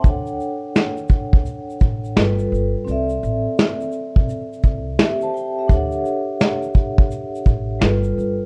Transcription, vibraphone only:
0, 0, Header, 1, 2, 480
1, 0, Start_track
1, 0, Key_signature, 2, "major"
1, 0, Tempo, 705882
1, 31, Time_signature, 4, 2, 24, 8
1, 5751, End_track
2, 0, Start_track
2, 0, Title_t, "Vibraphone"
2, 0, Program_c, 0, 11
2, 0, Control_c, 0, 64, 127
2, 0, Note_on_c, 0, 79, 60
2, 15, Note_on_c, 0, 62, 72
2, 31, Note_on_c, 0, 69, 62
2, 39, Control_c, 0, 64, 0
2, 45, Note_on_c, 0, 73, 60
2, 61, Note_on_c, 0, 78, 74
2, 153, Control_c, 0, 64, 127
2, 177, Note_off_c, 0, 79, 0
2, 1436, Note_off_c, 0, 62, 0
2, 1444, Note_off_c, 0, 69, 0
2, 1451, Note_off_c, 0, 73, 0
2, 1459, Note_off_c, 0, 78, 0
2, 1468, Note_on_c, 0, 55, 76
2, 1474, Note_on_c, 0, 65, 70
2, 1480, Control_c, 0, 64, 0
2, 1482, Note_on_c, 0, 69, 80
2, 1490, Note_on_c, 0, 71, 92
2, 1581, Control_c, 0, 64, 127
2, 1936, Note_on_c, 0, 60, 71
2, 1943, Note_off_c, 0, 69, 0
2, 1949, Note_off_c, 0, 55, 0
2, 1951, Note_on_c, 0, 69, 68
2, 1952, Note_off_c, 0, 65, 0
2, 1959, Control_c, 0, 64, 0
2, 1960, Note_off_c, 0, 71, 0
2, 1968, Note_on_c, 0, 74, 66
2, 1982, Note_on_c, 0, 76, 79
2, 2086, Control_c, 0, 64, 127
2, 3364, Note_off_c, 0, 69, 0
2, 3372, Note_off_c, 0, 74, 0
2, 3379, Note_off_c, 0, 76, 0
2, 3397, Note_on_c, 0, 76, 68
2, 3400, Note_on_c, 0, 67, 56
2, 3544, Note_off_c, 0, 76, 0
2, 3545, Note_off_c, 0, 67, 0
2, 3553, Note_on_c, 0, 81, 71
2, 3557, Note_on_c, 0, 72, 55
2, 3629, Note_off_c, 0, 81, 0
2, 3631, Note_off_c, 0, 72, 0
2, 3633, Note_on_c, 0, 79, 73
2, 3782, Note_off_c, 0, 79, 0
2, 3799, Note_on_c, 0, 76, 68
2, 3803, Note_on_c, 0, 67, 57
2, 3836, Note_off_c, 0, 60, 0
2, 3861, Note_on_c, 0, 62, 68
2, 3875, Note_on_c, 0, 69, 67
2, 3879, Control_c, 0, 64, 0
2, 3890, Note_on_c, 0, 73, 64
2, 3906, Note_on_c, 0, 78, 71
2, 3983, Control_c, 0, 64, 127
2, 4022, Note_off_c, 0, 76, 0
2, 4024, Note_off_c, 0, 67, 0
2, 5279, Note_off_c, 0, 62, 0
2, 5285, Note_off_c, 0, 69, 0
2, 5293, Note_off_c, 0, 73, 0
2, 5301, Note_off_c, 0, 78, 0
2, 5303, Note_on_c, 0, 55, 71
2, 5309, Note_on_c, 0, 65, 71
2, 5318, Note_on_c, 0, 69, 69
2, 5321, Control_c, 0, 64, 0
2, 5326, Note_on_c, 0, 71, 97
2, 5438, Control_c, 0, 64, 127
2, 5751, Note_off_c, 0, 55, 0
2, 5751, Note_off_c, 0, 65, 0
2, 5751, Note_off_c, 0, 69, 0
2, 5751, Note_off_c, 0, 71, 0
2, 5751, End_track
0, 0, End_of_file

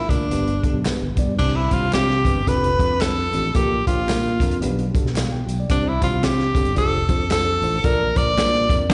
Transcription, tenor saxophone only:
0, 0, Header, 1, 2, 480
1, 0, Start_track
1, 0, Tempo, 538117
1, 1241, Time_signature, 4, 2, 24, 8
1, 7972, End_track
2, 0, Start_track
2, 0, Title_t, "Tenor saxophone"
2, 0, Program_c, 0, 66
2, 0, Note_on_c, 0, 64, 82
2, 83, Note_on_c, 0, 62, 77
2, 96, Note_off_c, 0, 64, 0
2, 759, Note_off_c, 0, 62, 0
2, 1235, Note_on_c, 0, 62, 85
2, 1388, Note_on_c, 0, 64, 80
2, 1401, Note_off_c, 0, 62, 0
2, 1541, Note_on_c, 0, 65, 86
2, 1554, Note_off_c, 0, 64, 0
2, 1722, Note_off_c, 0, 65, 0
2, 1727, Note_on_c, 0, 67, 91
2, 2211, Note_on_c, 0, 71, 103
2, 2224, Note_off_c, 0, 67, 0
2, 2685, Note_on_c, 0, 69, 105
2, 2698, Note_off_c, 0, 71, 0
2, 3165, Note_off_c, 0, 69, 0
2, 3173, Note_on_c, 0, 67, 93
2, 3436, Note_off_c, 0, 67, 0
2, 3453, Note_on_c, 0, 65, 86
2, 4089, Note_off_c, 0, 65, 0
2, 5089, Note_on_c, 0, 62, 84
2, 5244, Note_on_c, 0, 64, 78
2, 5257, Note_off_c, 0, 62, 0
2, 5375, Note_off_c, 0, 64, 0
2, 5380, Note_on_c, 0, 65, 84
2, 5573, Note_on_c, 0, 67, 85
2, 5587, Note_off_c, 0, 65, 0
2, 6043, Note_off_c, 0, 67, 0
2, 6048, Note_on_c, 0, 69, 98
2, 6489, Note_off_c, 0, 69, 0
2, 6528, Note_on_c, 0, 69, 110
2, 6999, Note_on_c, 0, 70, 104
2, 7013, Note_off_c, 0, 69, 0
2, 7287, Note_on_c, 0, 74, 111
2, 7300, Note_off_c, 0, 70, 0
2, 7954, Note_off_c, 0, 74, 0
2, 7972, End_track
0, 0, End_of_file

